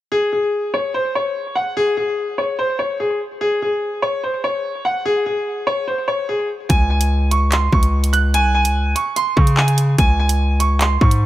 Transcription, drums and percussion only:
0, 0, Header, 1, 2, 480
1, 0, Start_track
1, 0, Tempo, 410959
1, 142, Time_signature, 4, 2, 24, 8
1, 13149, End_track
2, 0, Start_track
2, 0, Title_t, "Drums"
2, 7823, Note_on_c, 9, 36, 123
2, 7823, Note_on_c, 9, 42, 87
2, 7940, Note_off_c, 9, 36, 0
2, 7940, Note_off_c, 9, 42, 0
2, 8184, Note_on_c, 9, 42, 85
2, 8301, Note_off_c, 9, 42, 0
2, 8543, Note_on_c, 9, 42, 78
2, 8660, Note_off_c, 9, 42, 0
2, 8783, Note_on_c, 9, 39, 120
2, 8784, Note_on_c, 9, 42, 77
2, 8900, Note_off_c, 9, 39, 0
2, 8900, Note_off_c, 9, 42, 0
2, 9023, Note_on_c, 9, 36, 95
2, 9140, Note_off_c, 9, 36, 0
2, 9142, Note_on_c, 9, 42, 70
2, 9259, Note_off_c, 9, 42, 0
2, 9387, Note_on_c, 9, 42, 83
2, 9502, Note_off_c, 9, 42, 0
2, 9502, Note_on_c, 9, 42, 85
2, 9619, Note_off_c, 9, 42, 0
2, 9743, Note_on_c, 9, 42, 82
2, 9860, Note_off_c, 9, 42, 0
2, 10103, Note_on_c, 9, 42, 88
2, 10220, Note_off_c, 9, 42, 0
2, 10463, Note_on_c, 9, 42, 80
2, 10580, Note_off_c, 9, 42, 0
2, 10704, Note_on_c, 9, 42, 79
2, 10820, Note_off_c, 9, 42, 0
2, 10942, Note_on_c, 9, 36, 91
2, 11059, Note_off_c, 9, 36, 0
2, 11062, Note_on_c, 9, 42, 70
2, 11178, Note_off_c, 9, 42, 0
2, 11181, Note_on_c, 9, 39, 114
2, 11298, Note_off_c, 9, 39, 0
2, 11306, Note_on_c, 9, 42, 76
2, 11421, Note_off_c, 9, 42, 0
2, 11421, Note_on_c, 9, 42, 85
2, 11538, Note_off_c, 9, 42, 0
2, 11662, Note_on_c, 9, 36, 120
2, 11662, Note_on_c, 9, 42, 86
2, 11779, Note_off_c, 9, 36, 0
2, 11779, Note_off_c, 9, 42, 0
2, 12022, Note_on_c, 9, 42, 88
2, 12139, Note_off_c, 9, 42, 0
2, 12382, Note_on_c, 9, 42, 81
2, 12499, Note_off_c, 9, 42, 0
2, 12622, Note_on_c, 9, 39, 127
2, 12623, Note_on_c, 9, 42, 82
2, 12739, Note_off_c, 9, 39, 0
2, 12740, Note_off_c, 9, 42, 0
2, 12862, Note_on_c, 9, 36, 95
2, 12979, Note_off_c, 9, 36, 0
2, 12980, Note_on_c, 9, 42, 68
2, 13097, Note_off_c, 9, 42, 0
2, 13149, End_track
0, 0, End_of_file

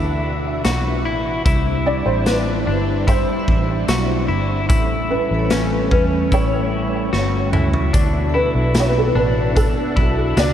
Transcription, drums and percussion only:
0, 0, Header, 1, 2, 480
1, 0, Start_track
1, 0, Key_signature, 2, "major"
1, 0, Tempo, 810811
1, 863, Time_signature, 4, 2, 24, 8
1, 6236, End_track
2, 0, Start_track
2, 0, Title_t, "Drums"
2, 382, Note_on_c, 9, 42, 73
2, 382, Note_on_c, 9, 54, 60
2, 385, Note_on_c, 9, 38, 102
2, 441, Note_off_c, 9, 42, 0
2, 441, Note_off_c, 9, 54, 0
2, 444, Note_off_c, 9, 38, 0
2, 863, Note_on_c, 9, 36, 114
2, 863, Note_on_c, 9, 42, 76
2, 922, Note_off_c, 9, 36, 0
2, 922, Note_off_c, 9, 42, 0
2, 1339, Note_on_c, 9, 42, 74
2, 1341, Note_on_c, 9, 38, 106
2, 1341, Note_on_c, 9, 54, 64
2, 1398, Note_off_c, 9, 42, 0
2, 1400, Note_off_c, 9, 38, 0
2, 1401, Note_off_c, 9, 54, 0
2, 1821, Note_on_c, 9, 42, 77
2, 1822, Note_on_c, 9, 36, 96
2, 1881, Note_off_c, 9, 36, 0
2, 1881, Note_off_c, 9, 42, 0
2, 2060, Note_on_c, 9, 36, 85
2, 2119, Note_off_c, 9, 36, 0
2, 2299, Note_on_c, 9, 42, 69
2, 2299, Note_on_c, 9, 54, 64
2, 2302, Note_on_c, 9, 38, 108
2, 2358, Note_off_c, 9, 42, 0
2, 2358, Note_off_c, 9, 54, 0
2, 2361, Note_off_c, 9, 38, 0
2, 2780, Note_on_c, 9, 42, 69
2, 2781, Note_on_c, 9, 36, 119
2, 2839, Note_off_c, 9, 42, 0
2, 2840, Note_off_c, 9, 36, 0
2, 3257, Note_on_c, 9, 42, 74
2, 3260, Note_on_c, 9, 38, 116
2, 3260, Note_on_c, 9, 54, 61
2, 3317, Note_off_c, 9, 42, 0
2, 3319, Note_off_c, 9, 38, 0
2, 3319, Note_off_c, 9, 54, 0
2, 3501, Note_on_c, 9, 36, 88
2, 3560, Note_off_c, 9, 36, 0
2, 3740, Note_on_c, 9, 42, 70
2, 3741, Note_on_c, 9, 36, 95
2, 3799, Note_off_c, 9, 42, 0
2, 3800, Note_off_c, 9, 36, 0
2, 4220, Note_on_c, 9, 38, 56
2, 4279, Note_off_c, 9, 38, 0
2, 4458, Note_on_c, 9, 45, 93
2, 4518, Note_off_c, 9, 45, 0
2, 4579, Note_on_c, 9, 43, 89
2, 4638, Note_off_c, 9, 43, 0
2, 4699, Note_on_c, 9, 42, 69
2, 4701, Note_on_c, 9, 36, 117
2, 4758, Note_off_c, 9, 42, 0
2, 4760, Note_off_c, 9, 36, 0
2, 5177, Note_on_c, 9, 42, 74
2, 5179, Note_on_c, 9, 38, 116
2, 5180, Note_on_c, 9, 54, 64
2, 5236, Note_off_c, 9, 42, 0
2, 5239, Note_off_c, 9, 38, 0
2, 5239, Note_off_c, 9, 54, 0
2, 5662, Note_on_c, 9, 42, 78
2, 5663, Note_on_c, 9, 36, 94
2, 5721, Note_off_c, 9, 42, 0
2, 5722, Note_off_c, 9, 36, 0
2, 5901, Note_on_c, 9, 36, 91
2, 5960, Note_off_c, 9, 36, 0
2, 6139, Note_on_c, 9, 42, 80
2, 6139, Note_on_c, 9, 54, 67
2, 6142, Note_on_c, 9, 38, 115
2, 6198, Note_off_c, 9, 42, 0
2, 6198, Note_off_c, 9, 54, 0
2, 6201, Note_off_c, 9, 38, 0
2, 6236, End_track
0, 0, End_of_file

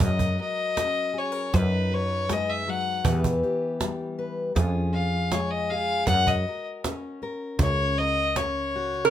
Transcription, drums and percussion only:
0, 0, Header, 1, 2, 480
1, 0, Start_track
1, 0, Tempo, 758534
1, 6, Time_signature, 4, 2, 24, 8
1, 5758, End_track
2, 0, Start_track
2, 0, Title_t, "Cajon"
2, 1, Note_on_c, 9, 36, 83
2, 64, Note_off_c, 9, 36, 0
2, 122, Note_on_c, 9, 36, 64
2, 185, Note_off_c, 9, 36, 0
2, 249, Note_on_c, 9, 38, 25
2, 313, Note_off_c, 9, 38, 0
2, 488, Note_on_c, 9, 38, 77
2, 551, Note_off_c, 9, 38, 0
2, 972, Note_on_c, 9, 36, 76
2, 972, Note_on_c, 9, 38, 24
2, 1036, Note_off_c, 9, 36, 0
2, 1036, Note_off_c, 9, 38, 0
2, 1452, Note_on_c, 9, 38, 77
2, 1515, Note_off_c, 9, 38, 0
2, 1928, Note_on_c, 9, 36, 91
2, 1991, Note_off_c, 9, 36, 0
2, 2052, Note_on_c, 9, 36, 74
2, 2115, Note_off_c, 9, 36, 0
2, 2171, Note_on_c, 9, 38, 28
2, 2235, Note_off_c, 9, 38, 0
2, 2409, Note_on_c, 9, 38, 79
2, 2472, Note_off_c, 9, 38, 0
2, 2886, Note_on_c, 9, 36, 77
2, 2886, Note_on_c, 9, 38, 24
2, 2950, Note_off_c, 9, 36, 0
2, 2950, Note_off_c, 9, 38, 0
2, 3364, Note_on_c, 9, 38, 76
2, 3427, Note_off_c, 9, 38, 0
2, 3840, Note_on_c, 9, 36, 80
2, 3840, Note_on_c, 9, 38, 24
2, 3903, Note_off_c, 9, 36, 0
2, 3903, Note_off_c, 9, 38, 0
2, 3966, Note_on_c, 9, 36, 63
2, 4029, Note_off_c, 9, 36, 0
2, 4088, Note_on_c, 9, 38, 27
2, 4151, Note_off_c, 9, 38, 0
2, 4331, Note_on_c, 9, 38, 76
2, 4394, Note_off_c, 9, 38, 0
2, 4569, Note_on_c, 9, 38, 25
2, 4632, Note_off_c, 9, 38, 0
2, 4803, Note_on_c, 9, 36, 81
2, 4803, Note_on_c, 9, 38, 23
2, 4867, Note_off_c, 9, 36, 0
2, 4867, Note_off_c, 9, 38, 0
2, 4928, Note_on_c, 9, 38, 25
2, 4991, Note_off_c, 9, 38, 0
2, 5291, Note_on_c, 9, 38, 76
2, 5355, Note_off_c, 9, 38, 0
2, 5653, Note_on_c, 9, 38, 24
2, 5716, Note_off_c, 9, 38, 0
2, 5758, End_track
0, 0, End_of_file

